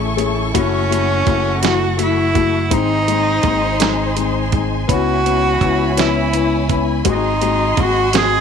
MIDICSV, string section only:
0, 0, Header, 1, 2, 480
1, 0, Start_track
1, 0, Key_signature, 4, "minor"
1, 0, Tempo, 722022
1, 368, Time_signature, 6, 3, 24, 8
1, 5588, End_track
2, 0, Start_track
2, 0, Title_t, "String section"
2, 0, Program_c, 0, 48
2, 0, Note_on_c, 0, 64, 81
2, 0, Note_on_c, 0, 69, 75
2, 0, Note_on_c, 0, 80, 69
2, 0, Note_on_c, 0, 85, 92
2, 341, Note_off_c, 0, 80, 0
2, 364, Note_on_c, 0, 78, 76
2, 1772, Note_off_c, 0, 69, 0
2, 1779, Note_off_c, 0, 85, 0
2, 1781, Note_off_c, 0, 64, 0
2, 1791, Note_off_c, 0, 78, 0
2, 1802, Note_on_c, 0, 63, 91
2, 1803, Note_on_c, 0, 80, 75
2, 1805, Note_on_c, 0, 84, 85
2, 1807, Note_on_c, 0, 72, 81
2, 3230, Note_off_c, 0, 63, 0
2, 3232, Note_off_c, 0, 84, 0
2, 3233, Note_off_c, 0, 72, 0
2, 3242, Note_on_c, 0, 83, 91
2, 3243, Note_on_c, 0, 64, 79
2, 3244, Note_on_c, 0, 73, 78
2, 4671, Note_off_c, 0, 64, 0
2, 4671, Note_off_c, 0, 83, 0
2, 4672, Note_off_c, 0, 73, 0
2, 4692, Note_on_c, 0, 66, 77
2, 4692, Note_on_c, 0, 75, 76
2, 4695, Note_on_c, 0, 84, 95
2, 5588, Note_off_c, 0, 66, 0
2, 5588, Note_off_c, 0, 75, 0
2, 5588, Note_off_c, 0, 80, 0
2, 5588, Note_off_c, 0, 84, 0
2, 5588, End_track
0, 0, End_of_file